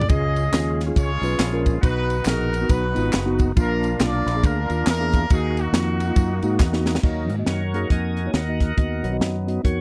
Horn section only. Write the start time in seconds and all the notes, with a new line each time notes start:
0.09 G#4 D#5
0.98 F4 G#4 C#5
1.82 D#4 F#4 B4
2.27 D#4 F#4 A#4
2.71 D#4 F#4 B4
3.59 D4 F4 A#4
4.02 F4 A#4 D5
4.45 D4 F4 A#4
4.88 D4 F4 A#4
5.32 D#4 G#4
5.58 A#3 D#4 F#4